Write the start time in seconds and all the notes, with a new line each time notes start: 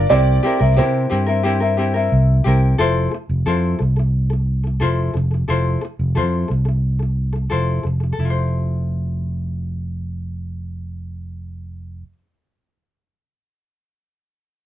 Already playing: F4
0.09 C2 C4 E4 G4 A#4 D5
0.43 C4 E4 G4 A#4
0.60 C2 C4 E4 A#4
0.76 C3 C4 E4 G4 A#4 C5
1.10 G2 C4 E4 G4 A#4
1.27 C4 E4 A#4
1.43 C4 E4 G4 A#4
1.60 C4 E4 A#4
1.77 C4 E4 G4 A#4
1.94 C4 E4 A#4
2.12 C2
2.44 C2 C4 E4 G4 A#4
2.78 F1 E4 F4 A4 C5
3.11 E4 A4
3.29 F1
3.46 F2 E4 F4 A4 C5
3.79 C2 E4 A4
3.96 E4 A4
4.30 E4 A4
4.64 E4 A4
4.80 F1 E4 F4 A4 C5
5.14 F1 E4 A4
5.31 E4 A4
5.48 F1 E4 F4 A4 C5
5.81 E4 A4
5.99 F1
6.15 F2 E4 F4 A4 C5
6.48 C2 E4 A4
6.65 E4 A4
6.99 E4 A4
7.33 E4 A4
7.50 F1 E4 F4 A4 C5
7.83 F1 E4 A4
8.00 E4 A4
8.13 A4
8.19 F1 E4
8.25 F4
8.30 C5